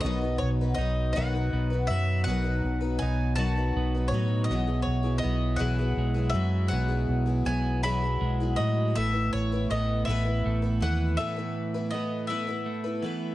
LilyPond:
<<
  \new Staff \with { instrumentName = "Mandolin" } { \time 6/8 \key e \major \tempo 4. = 54 dis''8 cis''8 dis''8 fis''4 e''8 | fis''4 gis''8 a''4 cis''8 | dis''8 cis''8 dis''8 fis''4 e''8 | fis''4 gis''8 b''4 dis''8 |
e''8 cis''8 dis''8 e''4 fis''8 | e''4 dis''8 e''4 r8 | }
  \new Staff \with { instrumentName = "Twelve-string acoustic guitar" } { \time 6/8 \key e \major <b, dis fis b dis' b'>16 <fis b dis' b'>8 <fis b dis' b'>16 <fis b dis' b'>8 <b, dis fis b dis' b'>16 <fis b dis' b'>8 <fis b dis' b'>16 <fis b b'>8 | <b, dis fis b dis' b'>16 <fis b dis' b'>8 <fis b dis' b'>16 <fis b dis' b'>8 <b, dis fis b dis' b'>16 <fis b dis' b'>8 <fis b dis' b'>16 <fis b dis' b'>8 | <b, e fis b e' gis'>16 <fis b e' gis'>8 <fis b e' gis'>16 <fis b e' gis'>8 <b, e fis b e' gis'>16 <fis b e' gis'>8 <fis b e' gis'>16 <fis b e' gis'>8 | <b, e fis b e' gis'>16 <fis b e' gis'>8 <fis b e' gis'>16 <fis b e' gis'>8 <b, e fis b e' gis'>16 <fis b e' gis'>8 <fis b e' gis'>16 <fis b e' gis'>8 |
<a b e' b'>16 <b e' b'>8 <b e' b'>16 <a b e' b'>8 <a b e' b'>16 <b e' b'>8 <b e' b'>16 <a b e' b'>8 | <a b e' b'>16 <b e' b'>8 <b e' b'>16 <a b e' b'>8 <a b e' b'>16 <b e' b'>8 <b e' b'>16 <a b e' b'>8 | }
  \new Staff \with { instrumentName = "Clean electric guitar" } { \time 6/8 \key e \major b,4 dis'8 fis'8 b8 fis8 | b,4 dis'8 fis'8 b8 fis8 | b,4 b8 e'8 gis8 fis8 | b,4 b8 e'8 gis8 fis8 |
a,4 b8 e'8 a8 e8 | a,4 b8 e'8 a8 e8 | }
  \new Staff \with { instrumentName = "Fingered electric bass" } { \clef bass \time 6/8 \key e \major b,,8 b,,8 b,,8 b,,8 b,,8 fis,8 | b,,8 b,,8 b,,4 b,,8 a,8 | b,,8 b,,8 b,,8 b,,8 b,,8 fis,8 | b,,8 b,,8 b,,4 b,,8 a,8 |
a,,8 a,,8 a,,8 a,,8 a,,8 dis,8 | r2. | }
>>